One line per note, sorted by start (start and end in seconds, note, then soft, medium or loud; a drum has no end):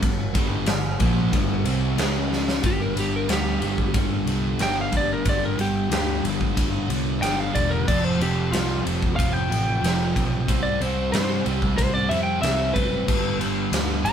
0.02 0.33 G1 medium
0.02 0.28 G2 medium
0.02 0.28 D3 medium
0.02 kick loud
0.02 ride loud
0.34 0.65 G1 loud
0.34 0.66 G2 medium
0.34 0.66 D3 loud
0.34 0.67 G3 loud
0.34 kick loud
0.34 ride medium
0.66 0.97 G1 medium
0.66 0.93 G2 medium
0.66 0.93 D3 medium
0.66 snare loud
0.66 ride loud
0.99 1.31 A#1 loud
0.99 1.31 A#2 medium
0.99 1.31 F3 loud
0.99 1.32 A#3 loud
0.99 kick loud
0.99 ride medium
1.32 1.64 G1 medium
1.32 1.64 G2 medium
1.32 1.64 D3 loud
1.32 1.64 G3 medium
1.32 kick loud
1.32 ride loud
1.64 1.95 C2 medium
1.64 1.96 C3 medium
1.64 1.97 G3 medium
1.64 1.97 C4 loud
1.64 ride medium
1.96 2.59 C#2 medium
1.96 2.62 C#3 medium
1.96 2.62 G#3 loud
1.96 2.63 C#4 loud
1.96 snare loud
1.96 ride loud
2.33 snare medium
2.48 snare medium
2.62 2.92 G1 loud
2.62 2.93 G2 medium
2.62 2.93 D3 loud
2.62 2.95 G3 loud
2.62 kick loud
2.62 ride loud
2.66 2.81 G4 medium
2.81 2.96 A#4 medium
2.94 3.24 G1 medium
2.94 3.27 G2 medium
2.94 3.27 D3 medium
2.94 3.29 G3 medium
2.94 ride medium
3.00 3.14 G4 medium
3.16 3.30 A#4 medium
3.27 3.56 D2 medium
3.27 3.60 G2 medium
3.27 3.60 D3 loud
3.27 3.61 G3 loud
3.27 snare loud
3.27 ride loud
3.33 3.94 G4 medium
3.61 3.89 G1 medium
3.61 3.91 G2 medium
3.61 3.92 D3 medium
3.61 3.93 G3 loud
3.61 ride medium
3.78 kick medium
3.92 4.23 G1 medium
3.92 4.25 G2 medium
3.92 4.26 D3 loud
3.92 4.26 G3 medium
3.92 kick loud
3.92 ride medium
4.25 4.54 C2 medium
4.25 4.58 G2 medium
4.25 4.59 D3 medium
4.25 4.60 G3 medium
4.25 ride medium
4.58 4.87 G1 medium
4.58 4.91 G2 medium
4.58 4.93 D3 loud
4.58 4.93 G3 loud
4.58 snare loud
4.58 ride medium
4.62 4.77 G5 loud
4.81 4.95 F5 medium
4.92 5.21 G1 medium
4.92 5.24 G2 medium
4.92 5.25 D3 medium
4.92 5.25 G3 medium
4.92 kick medium
4.92 ride medium
4.97 5.11 D5 loud
5.13 5.27 A#4 medium
5.25 5.54 G1 medium
5.25 5.55 G2 medium
5.25 5.57 D3 loud
5.25 5.57 G3 loud
5.25 kick loud
5.25 ride medium
5.29 5.43 D5 medium
5.45 5.59 A#4 medium
5.57 5.86 G1 medium
5.57 5.88 G2 medium
5.57 5.88 D3 medium
5.57 5.89 G3 medium
5.57 ride medium
5.61 5.91 G4 medium
5.89 6.18 D2 medium
5.89 6.21 G2 loud
5.89 6.22 D3 loud
5.89 6.22 G3 loud
5.89 snare loud
5.89 ride medium
5.93 6.24 G4 medium
6.22 6.52 G1 medium
6.22 6.53 G2 medium
6.22 6.54 D3 medium
6.22 6.54 G3 loud
6.22 ride medium
6.41 kick medium
6.54 6.85 G1 medium
6.54 6.86 G2 medium
6.54 6.87 D3 loud
6.54 6.87 G3 loud
6.54 kick loud
6.54 ride loud
6.87 7.17 C2 medium
6.87 7.18 G2 medium
6.87 7.18 D3 medium
6.87 7.18 G3 medium
6.87 ride medium
7.19 7.49 G1 medium
7.19 7.51 G2 loud
7.19 7.52 D3 loud
7.19 7.52 G3 loud
7.19 7.40 G5 loud
7.19 ride medium
7.24 7.55 D3 loud
7.24 7.55 G3 loud
7.24 snare loud
7.40 7.55 F5 medium
7.52 7.83 E1 medium
7.52 7.84 G2 medium
7.52 7.84 D3 medium
7.52 7.84 G3 medium
7.52 7.70 D5 medium
7.52 kick medium
7.52 ride medium
7.71 7.86 A#4 medium
7.85 8.16 F1 medium
7.85 8.17 F2 loud
7.85 8.18 C3 loud
7.85 8.18 F3 loud
7.85 8.04 D5 medium
7.85 kick loud
7.85 crash loud
7.90 8.19 F2 medium
7.90 8.20 C3 medium
8.04 8.20 C5 medium
8.18 8.47 F1 medium
8.18 8.49 F2 medium
8.18 8.50 C3 medium
8.18 8.51 F3 medium
8.18 ride medium
8.22 8.53 G4 medium
8.51 8.80 C2 medium
8.51 8.82 F2 loud
8.51 8.82 C3 loud
8.51 8.83 F3 loud
8.51 8.84 F4 loud
8.51 ride loud
8.55 snare loud
8.83 9.13 F1 medium
8.83 9.14 F2 medium
8.83 9.15 C3 loud
8.83 9.16 F3 loud
8.83 ride medium
9.02 kick medium
9.15 9.47 F2 medium
9.15 9.47 C3 medium
9.15 9.48 F3 medium
9.15 9.33 F5 loud
9.19 9.47 F1 medium
9.19 kick loud
9.19 ride loud
9.33 10.60 G5 loud
9.48 9.77 A1 medium
9.48 9.80 F2 medium
9.48 9.80 C3 medium
9.48 9.81 F3 medium
9.52 ride medium
9.81 10.10 F1 medium
9.81 10.13 F2 medium
9.81 10.14 C3 loud
9.81 10.14 F3 loud
9.81 ride medium
9.86 snare loud
10.14 10.44 B1 medium
10.14 10.45 F2 medium
10.14 10.46 C3 medium
10.14 10.46 F3 medium
10.14 kick medium
10.14 ride medium
10.47 10.76 C2 medium
10.47 10.79 C3 loud
10.47 10.80 G3 medium
10.47 10.80 C4 loud
10.47 kick loud
10.47 ride medium
10.63 10.81 D5 medium
10.80 11.09 C2 medium
10.80 11.11 C3 medium
10.80 11.12 G3 medium
10.80 11.12 C4 medium
10.80 11.11 C5 medium
10.80 ride medium
11.12 11.41 G2 loud
11.12 11.44 C3 medium
11.12 11.46 G3 loud
11.12 11.45 C4 medium
11.12 11.44 C5 loud
11.12 snare loud
11.12 ride medium
11.45 11.74 C2 medium
11.45 11.74 C3 medium
11.45 11.76 G3 medium
11.45 11.75 C4 medium
11.45 ride medium
11.62 kick medium
11.76 12.06 C2 medium
11.76 12.08 C3 medium
11.76 12.10 G3 medium
11.76 12.09 C4 loud
11.76 11.94 C5 loud
11.76 kick loud
11.76 ride medium
11.94 12.10 D5 loud
12.09 12.38 F2 medium
12.09 12.40 C3 medium
12.09 12.42 G3 medium
12.09 12.42 C4 medium
12.09 12.23 E5 loud
12.09 ride medium
12.23 12.41 G5 medium
12.41 12.71 C2 medium
12.41 12.73 C3 medium
12.41 12.75 G3 loud
12.41 12.75 C4 loud
12.41 12.74 E5 medium
12.41 snare loud
12.41 ride medium
12.74 13.04 F#1 medium
12.74 13.06 C3 medium
12.74 13.08 G3 medium
12.74 13.06 C4 medium
12.74 13.38 B4 loud
12.74 kick medium
12.74 ride medium
13.07 13.36 G1 medium
13.07 13.39 G2 medium
13.07 13.39 D3 loud
13.07 13.40 G3 loud
13.07 kick loud
13.07 crash medium
13.40 13.68 G1 medium
13.40 13.72 G2 medium
13.40 13.71 D3 medium
13.40 13.73 G3 medium
13.40 ride medium
13.71 14.00 D2 medium
13.71 14.03 G2 medium
13.71 14.03 D3 loud
13.71 14.05 G3 loud
13.71 snare loud
13.71 ride loud
14.04 14.13 G1 medium
14.04 14.13 G2 medium
14.04 14.13 D3 medium
14.04 14.13 G3 medium
14.04 14.13 A#5 loud
14.04 ride medium